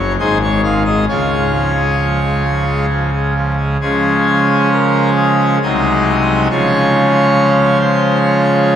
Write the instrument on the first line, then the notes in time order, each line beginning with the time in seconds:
pipe organ
Already playing: F#1 F#2 F#3 C#5
0.19 G#1 G#2 D#4 G#4 C5
0.42 G#3 C#5
0.64 D#3 F5
0.86 G#3 D#5
1.08 C#2 C#3 F4 G#4 C#5
1.30 G#3
1.53 F3
1.76 G#3
1.99 F3
2.23 G#3
2.45 F3
2.70 G#3
2.90 F3
3.13 G#3
3.36 F3
3.58 G#3
3.81 C#3 F3 G#3 C#4 G#4
4.72 A#4
5.17 G#4
5.62 C2 C3 F#3 G#3 D#4 D#5
6.50 C#3 F3 G#3 F4 C#5
7.81 C5
8.24 C#5